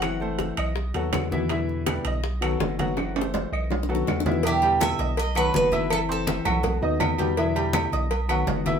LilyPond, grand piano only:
\new Staff \with { instrumentName = "Grand piano" } { \time 4/4 \key e \minor \tempo 4 = 164 <fis fis' fis''>8 <a a' c''>4 dis''4 <fis fis' a'>4 <e e' e''>8 | <e e' e''>4 <g g' b'>8 dis''4 <fis fis' a'>4 <fis fis' fis''>8~ | <fis fis' fis''>8 <a a' c''>4 dis''4 <fis fis' a'>4 <e e' e''>8 | <e e' e''>8 <g g' g''>4 <dis'' dis'''>4 <fis fis' fis''>4 <e' e'' e'''>8~ |
<e' e'' e'''>8 <c' c'' c'''>4 <fis fis' fis''>4 <dis' dis'' dis'''>4 <g g' g''>8 | <e e' e''>8 <g g' g''>4 <dis'' dis'''>4 <fis fis' fis''>4 <e' e'' e'''>8 | }